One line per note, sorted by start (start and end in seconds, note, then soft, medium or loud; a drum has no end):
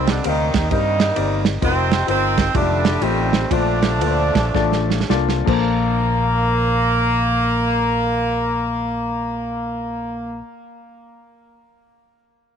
0.00 0.18 C2 loud
0.00 0.51 C3 medium
0.00 0.26 D#3 medium
0.00 0.24 G3 medium
0.00 0.16 C4 medium
0.00 0.16 D#4 medium
0.00 0.16 G4 medium
0.00 0.16 A#4 medium
0.00 0.16 D5 loud
0.07 0.26 D3 medium
0.07 0.26 D4 medium
0.07 snare loud
0.07 ride medium
0.24 0.51 D2 medium
0.24 0.68 D#3 medium
0.24 0.71 G3 medium
0.24 0.70 A#3 medium
0.24 0.61 C4 medium
0.24 0.61 D#4 medium
0.24 0.68 D#4 loud
0.24 0.62 G4 medium
0.24 0.61 A#4 medium
0.24 0.62 F5 medium
0.24 ride medium
0.54 0.68 D#2 medium
0.54 kick loud
0.54 snare loud
0.54 ride medium
0.71 1.10 G2 loud
0.71 1.42 D#3 medium
0.71 1.47 G3 medium
0.71 1.47 A#3 medium
0.71 1.07 C4 medium
0.71 1.07 D#4 medium
0.71 1.42 D#4 loud
0.71 1.07 G4 medium
0.71 1.08 A#4 medium
0.71 1.07 D#5 medium
0.71 kick loud
0.71 ride medium
1.00 snare loud
1.00 ride medium
1.16 1.56 G1 loud
1.16 1.53 C4 medium
1.16 1.53 D#4 medium
1.16 1.53 G4 medium
1.16 1.53 A#4 medium
1.16 1.53 D5 medium
1.16 ride medium
1.45 snare loud
1.45 ride soft
1.62 2.01 F1 loud
1.62 2.06 C3 medium
1.62 2.08 D#3 medium
1.62 1.98 C4 medium
1.62 2.06 C4 loud
1.62 1.98 D#4 medium
1.62 1.99 F4 medium
1.62 1.99 A#4 medium
1.62 1.99 D#5 medium
1.62 kick loud
1.62 ride medium
1.91 snare loud
1.91 ride medium
2.07 2.48 G1 medium
2.07 2.52 D#3 medium
2.07 2.44 C4 medium
2.07 2.52 C4 loud
2.07 2.44 D#4 medium
2.07 2.45 F4 medium
2.07 2.45 A#4 medium
2.07 2.45 C5 medium
2.07 ride medium
2.37 kick loud
2.37 snare loud
2.37 ride medium
2.55 2.95 F1 loud
2.55 3.03 D3 loud
2.55 2.92 D#3 medium
2.55 3.48 G3 medium
2.55 2.62 G#3 medium
2.55 3.02 A3 medium
2.55 3.03 D4 loud
2.55 2.92 F4 medium
2.55 2.93 G4 medium
2.55 2.92 D5 medium
2.55 kick loud
2.55 ride medium
2.60 2.95 A3 medium
2.85 snare loud
2.85 ride medium
3.01 3.43 A1 loud
3.01 3.51 C3 medium
3.01 3.48 D#3 medium
3.01 3.41 A3 medium
3.01 3.48 A3 medium
3.01 3.51 C4 loud
3.01 3.41 D#4 medium
3.01 3.41 F4 medium
3.01 3.41 G4 medium
3.01 3.10 D5 medium
3.01 ride medium
3.07 3.43 D#5 medium
3.33 snare loud
3.33 ride medium
3.51 4.01 A#1 loud
3.51 4.00 A#2 medium
3.51 5.11 D3 medium
3.51 5.07 F3 medium
3.51 3.91 A3 medium
3.51 5.07 A3 medium
3.51 3.91 D4 medium
3.51 5.11 D4 loud
3.51 3.91 F4 medium
3.51 3.91 A4 medium
3.51 3.92 C5 medium
3.51 kick loud
3.51 ride medium
3.82 snare loud
3.82 ride medium
4.01 4.30 D2 loud
4.01 4.43 A#2 medium
4.01 4.43 D4 medium
4.01 4.44 F4 medium
4.01 4.43 A4 medium
4.01 4.10 B4 medium
4.01 ride medium
4.07 4.46 C5 medium
4.35 4.52 A#1 medium
4.35 kick medium
4.35 snare loud
4.35 ride medium
4.54 5.02 A1 loud
4.54 4.99 A3 medium
4.54 4.98 D4 medium
4.54 4.99 F4 medium
4.54 4.99 A4 medium
4.54 4.99 D5 loud
4.54 kick loud
4.54 snare medium
4.72 snare medium
4.90 snare medium
5.00 snare medium
5.09 5.42 C2 loud
5.09 5.43 A#3 medium
5.09 5.44 D4 medium
5.09 5.47 F4 medium
5.09 5.45 A4 medium
5.09 5.48 D5 loud
5.09 snare medium
5.29 snare medium
5.44 10.39 A#1 medium
5.44 10.41 A#1 loud
5.44 10.38 A#3 medium
5.44 10.41 A#3 loud
5.44 10.39 D4 medium
5.44 10.40 A4 medium
5.44 10.41 C5 loud
5.44 kick loud
5.44 crash medium